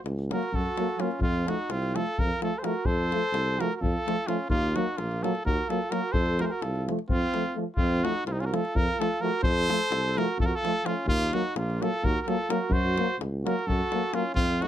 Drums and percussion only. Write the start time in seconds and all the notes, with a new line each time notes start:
0.06 davul high
0.19 davul high
0.31 davul high
0.43 davul high
0.54 davul low
0.66 davul high
0.77 davul high
0.89 davul high
1.00 davul high
1.11 davul high
1.21 davul low
1.48 davul high
1.60 davul high
1.70 davul high
1.83 davul high
1.96 davul high
2.07 davul high
2.18 davul low
2.42 davul high
2.64 davul high
2.85 davul low
3.12 davul high
3.24 davul high
3.34 davul high
3.47 davul high
3.61 davul high
3.72 davul high
3.83 davul low
4.08 davul high
4.28 davul high
4.50 davul low
4.76 davul high
4.98 davul high
5.11 davul high
5.24 davul high
5.35 davul high
5.47 davul low
5.70 davul high
5.92 davul high
6.14 davul low
6.26 davul high
6.39 davul high
6.51 davul high
6.62 davul high
6.75 davul high
6.89 davul high
6.99 davul high
7.09 davul low
7.22 davul high
7.34 davul high
7.46 davul high
7.77 davul low
8.05 davul high
8.15 davul high
8.27 davul high
8.40 davul high
8.54 davul high
8.65 davul high
8.76 davul low
9.02 davul high
9.43 davul low
9.70 davul high
9.80 davul high
9.92 davul high
10.18 davul high
10.28 davul high
10.40 davul low
10.65 davul high
10.86 davul high
11.08 davul low
11.33 davul high
11.45 davul high
11.56 davul high
11.70 davul high
11.82 davul high
11.94 davul high
12.04 davul low
12.28 davul high
12.50 davul high
12.71 davul low
12.98 davul high
13.10 davul high
13.21 davul high
13.47 davul high
13.59 davul high
13.69 davul low
13.81 davul high
13.92 davul high
14.03 davul high
14.14 davul high
14.36 davul low
14.62 davul high